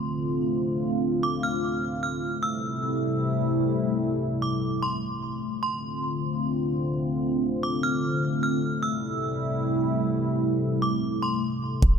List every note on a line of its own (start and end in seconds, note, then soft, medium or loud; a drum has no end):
0.00 2.19 D3 medium
0.00 2.19 A3 medium
0.00 2.19 C4 medium
0.00 2.19 F4 medium
0.00 0.19 C6 medium
1.23 1.42 D6 medium
1.43 1.99 F6 medium
2.03 2.22 F6 medium
2.23 5.39 C3 medium
2.23 5.39 G3 medium
2.23 5.39 A3 medium
2.23 5.39 E4 medium
2.43 3.39 E6 medium
4.42 4.80 D6 medium
4.83 5.02 C6 medium
5.43 8.59 D3 medium
5.43 11.99 A3 medium
5.43 8.59 C4 medium
5.43 8.59 F4 medium
5.63 6.59 C6 medium
7.63 7.82 D6 medium
7.83 8.39 F6 medium
8.43 8.62 F6 medium
8.62 11.79 C3 medium
8.62 11.79 G3 medium
8.62 11.79 E4 medium
8.83 9.79 E6 medium
10.82 11.20 D6 medium
11.22 11.41 C6 medium
11.82 11.99 D1 loud
11.82 11.99 D3 medium
11.82 11.99 C4 medium
11.82 11.99 F4 medium
11.82 kick loud
11.82 closed hi-hat medium